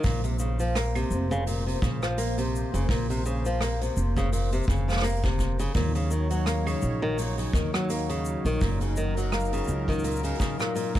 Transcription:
0.03 A#1 A#2 A#3 C5, kick, open hi-hat, shaker
0.23 C3, open hi-hat, shaker
0.39 C#3, shaker
0.60 F3, open hi-hat, shaker
0.75 A#3, cross-stick, open hi-hat, shaker
0.95 C3, open hi-hat, claves, shaker
1.11 F1, shaker
1.31 C#3, shaker
1.47 A#2, open hi-hat, shaker
1.67 C3, open hi-hat
1.82 A#1 C#3, kick, shaker
2.02 F3, cross-stick, shaker
2.18 A#3, open hi-hat, shaker
2.38 C3, open hi-hat, shaker
2.56 shaker
2.74 F1 C#3, open hi-hat, shaker
2.89 A#1 A#2, kick, open hi-hat, shaker
3.10 C3, open hi-hat, shaker
3.26 C#3, shaker
3.46 F3, open hi-hat, shaker
3.61 A#3, cross-stick, open hi-hat, shaker
3.81 C3, open hi-hat, shaker
3.97 F1, shaker
4.17 C#3, kick, shaker
4.32 A#2, open hi-hat, shaker
4.52 C3, open hi-hat, shaker
4.63 shaker
4.68 F1 C#3, kick, shaker
4.75 shaker
4.88 F3, cross-stick, shaker
4.92 cross-stick
4.97 cross-stick
4.99 cross-stick
5.02 A#3, cross-stick, open hi-hat, shaker
5.06 shaker
5.09 shaker
5.16 shaker
5.18 shaker
5.21 C3, kick, open hi-hat, shaker
5.24 shaker
5.39 kick, shaker
5.59 C#3, open hi-hat, shaker
5.74 D#2 A#2 F#3 D#4 C#5, kick, open hi-hat, shaker
5.95 C#3, open hi-hat, shaker
6.11 D#3, shaker
6.30 F#3, open hi-hat, shaker
6.46 A#3, cross-stick, open hi-hat, shaker
6.66 C#3, open hi-hat, claves, shaker
6.82 A#1, shaker
7.02 D#3
7.18 A#2, open hi-hat, shaker
7.38 C#3, open hi-hat, shaker
7.53 D#2 D#3, kick, shaker
7.74 F#3, cross-stick, shaker
7.90 A#3, open hi-hat, shaker
8.09 C#3, open hi-hat, shaker
8.25 shaker
8.45 A#1 D#3, open hi-hat, shaker
8.61 F#1 A#2 A#4, kick, open hi-hat, shaker
8.81 C#3, open hi-hat, shaker
8.97 D#3, shaker
9.17 F#3, open hi-hat, shaker
9.32 A#3, cross-stick, open hi-hat, shaker
9.40 shaker
9.45 shaker
9.52 C#3, open hi-hat, shaker
9.57 shaker
9.64 shaker
9.68 C#2, shaker
9.88 D#3, kick, shaker
9.92 shaker
9.99 shaker
10.04 A#2, open hi-hat, shaker
10.11 shaker
10.16 shaker
10.24 C#3, open hi-hat, shaker
10.35 open hi-hat
10.40 C#3, kick, shaker
10.47 open hi-hat
10.60 A#2, cross-stick, shaker
10.75 A#2, open hi-hat, shaker
10.95 A#2, kick, open hi-hat, shaker

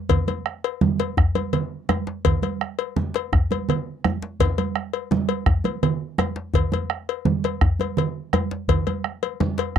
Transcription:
0.09 bombo low, cowbell, low conga, djembe bass
0.28 cowbell, high conga, djembe tone
0.46 bombo rim
0.64 bombo rim, cowbell
0.81 bombo rim, high conga, djembe tone, low conga
0.99 cowbell, djembe slap, high conga
1.17 bombo rim, bombo low, djembe bass
1.35 cowbell, djembe slap, high conga, djembe tone
1.53 cowbell, low conga
1.89 bombo rim, cowbell, djembe tone, high conga
2.07 djembe slap, high conga
2.25 bombo low, cowbell, low conga, djembe bass
2.42 cowbell, high conga, djembe tone
2.61 bombo rim, djembe slap
2.79 cowbell
2.96 djembe tone, high conga, low conga
3.14 cowbell, djembe slap
3.33 bombo rim, bombo low, high conga, djembe bass
3.51 cowbell, djembe slap, djembe tone, high conga
3.69 cowbell, low conga
4.04 bombo rim, djembe tone, high conga
4.22 djembe slap
4.40 bombo low, cowbell, low conga, djembe bass
4.58 cowbell, djembe tone, high conga
4.75 bombo rim, djembe slap
4.93 cowbell
5.11 djembe tone, high conga, low conga
5.29 cowbell
5.46 bombo rim, bombo low, high conga, djembe bass
5.64 cowbell, djembe slap, djembe tone, high conga
5.83 cowbell, low conga
6.18 bombo rim, cowbell, djembe tone, high conga
6.36 djembe slap
6.54 bombo low, cowbell, djembe bass, low conga
6.72 cowbell, high conga, djembe tone
6.90 bombo rim, djembe slap
7.09 cowbell
7.25 high conga, djembe tone, low conga
7.44 cowbell, djembe slap
7.61 bombo rim, bombo low, high conga, djembe bass
7.79 cowbell, djembe slap, high conga, djembe tone
7.97 cowbell, djembe slap, low conga
8.33 bombo rim, cowbell, djembe tone, high conga
8.51 djembe slap
8.68 bombo low, cowbell, djembe slap, djembe bass, low conga
8.87 cowbell, djembe tone, high conga
9.04 bombo rim, high conga
9.23 cowbell, high conga
9.40 bombo rim, djembe tone, high conga, low conga
9.58 cowbell, djembe slap

